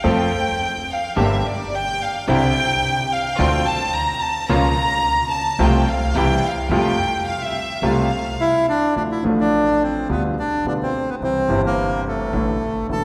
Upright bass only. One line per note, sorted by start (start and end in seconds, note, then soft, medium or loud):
0.05 0.28 F2 medium
1.17 1.40 G1 medium
2.28 2.51 C2 medium
3.39 3.62 D2 loud
4.49 4.73 C#2 medium
5.59 5.83 C2 loud
6.15 6.38 C2 medium
6.69 6.94 F2 medium
7.82 8.06 C2 medium
8.96 9.20 D2 soft
9.24 10.05 A1 medium
10.09 10.33 D2 medium
10.65 10.89 D2 medium
11.20 11.45 C2 soft
11.49 12.29 G1 medium
12.33 12.57 A1 medium
12.89 13.04 E1 medium